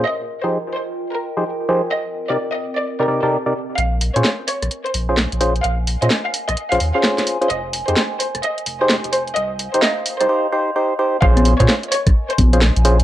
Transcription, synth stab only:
X:1
M:4/4
L:1/16
Q:"Swing 16ths" 1/4=129
K:Bbdor
V:1 name="Synth stab"
z3 [F,EGAc] z6 z [F,EGAc] z2 [F,EGAc] z | z3 [C,EGB=d] z4 z [C,EGBd] [C,EGBd] [C,EGBd] z [C,EGBd] z2 | z3 [DFAc] z6 z [DFAc] z2 [DFAc] z | z3 [DFAc] z4 z [DFAc] z [DFAc]4 [DFAc] |
z3 [EGAc] z6 z [EGAc] z4 | z3 [EGc] z3 [EGc] [EGc] z [EGc] z [EGc] z [EGc] z | [DFAc]3 [DFAc] z6 z [DFAc] z2 [DFAc] z |]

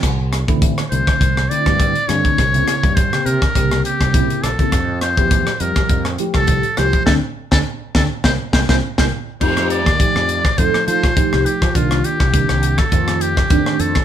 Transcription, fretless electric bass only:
X:1
M:4/4
L:1/16
Q:"Swing 16ths" 1/4=102
K:Cmix
V:1 name="Fretless electric bass" clef=bass
C,,3 A,,,2 z C,, z C,,2 z G,,2 z G,, z | C,,2 z G,,2 z C, z C,,2 z C,,2 z B,,, z | F,,3 E,,2 z F,, z F,,2 z C,,2 z C,, z | D,, z2 D,, z2 D,, z C,, z C,, C,, z C,, z2 |
[K:Fmix] F,,3 E,, z F,,2 z F,, z F,2 z C,, z F, | C,,2 z C,,2 C,,2 z F,,4 F,, z F,, z |]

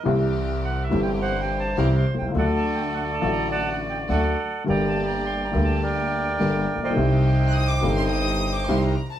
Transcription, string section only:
X:1
M:4/4
L:1/8
Q:1/4=104
K:Cdor
V:1 name="String section"
[C=EG]3 [CEG]3 [CEG] z | [A,D^F]3 [A,DF]3 [A,DF] z | [B,DG]3 [B,DG]3 [B,DG] z | [CEG]3 [CEG]3 [CEG] z |]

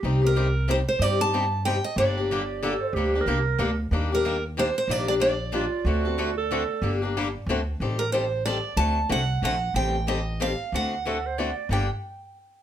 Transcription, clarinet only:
X:1
M:3/4
L:1/16
Q:"Swing" 1/4=185
K:Gm
V:1 name="Clarinet"
z12 | z12 | z4 G4 A4 | G3 B8 z |
z12 | z8 F4 | ^F6 A6- | A2 z8 z2 |
z12 | z12 | z12 | z4 A2 c2 d4 |
d2 z8 z2 |]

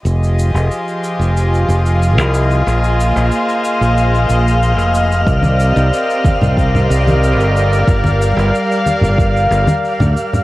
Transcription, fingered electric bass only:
X:1
M:4/4
L:1/16
Q:1/4=92
K:Fdor
V:1 name="Fingered electric bass" clef=bass
F,,,3 F,,, z3 F,,,3 F,,,3 C,,3 | B,,,3 B,,, z3 B,,,3 B,,,3 F,,,3 | C,,3 C,, z3 C,,3 C,,3 G,,,3 | G,,,3 G,,, z3 G,,,3 G,,, z2 D,, z2 |]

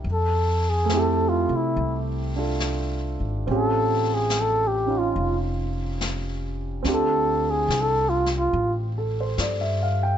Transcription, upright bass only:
X:1
M:4/4
L:1/8
Q:"Swing" 1/4=71
K:F
V:1 name="Upright bass" clef=bass
F,,3 C, C,,3 _A,,, | A,,,4 ^E,,,4 | D,,2 C,,2 A,,,2 G,,2 |]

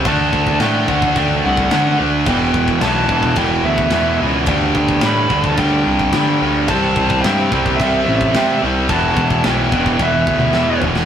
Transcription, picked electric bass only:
X:1
M:4/4
L:1/8
Q:1/4=108
K:Em
V:1 name="Picked electric bass" clef=bass
D,, D,, A,, D,, D,, C,, D, D,, | E,,, E,,, B,,, E,,, E,,, D,, E,, ^C,, | D,, D,, A,, D,, D,, C,, D, D,, | C,, C,, G,, C,, C,, A,,, C, C,, |
E,,, E,,, B,,, E,,, E,,, D,, E,, E,,, |]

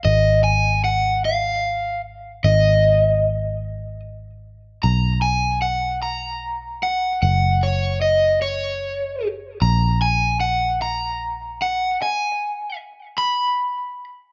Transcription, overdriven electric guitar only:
X:1
M:6/8
L:1/8
Q:3/8=50
K:G#dor
V:1 name="Overdriven electric guitar"
d g f e2 z | d4 z2 | a g f a2 f | f c d c2 z |
a g f a2 f | g2 z b2 z |]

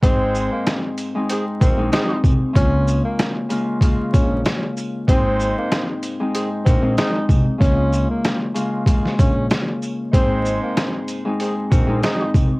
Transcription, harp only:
X:1
M:4/4
L:1/16
Q:"Swing 16ths" 1/4=95
K:Abmix
V:1 name="Harp"
[A,,A,CE]6 z [A,,A,CE]4 [A,,A,CE]4 z | [D,A,B,F]6 [D,A,B,F]2 [D,A,B,F]6 z2 | [A,,A,CE]6 z [A,,A,CE]4 [A,,A,CE]4 z | [D,A,B,F]6 [D,A,B,F]2 [D,A,B,F]6 z2 |
[A,,A,CE]6 z [A,,A,CE]4 [A,,A,CE]4 z |]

